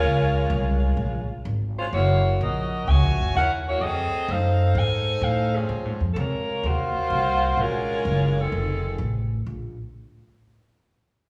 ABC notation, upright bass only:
X:1
M:4/4
L:1/8
Q:"Swing" 1/4=127
K:Bbm
V:1 name="Upright bass" clef=bass
D,,2 C,,2 B,,, z A,,,2 | G,,,2 B,,,2 (3D,, B,,, G,,, E,,2 | F,, z G,,2 ^G,,2 =A,,2 | (3B,, A,, F,, C,2 E,, z C,,2 |
B,,,2 G,,,2 F,,,2 =A,,,2 | B,,, z6 z |]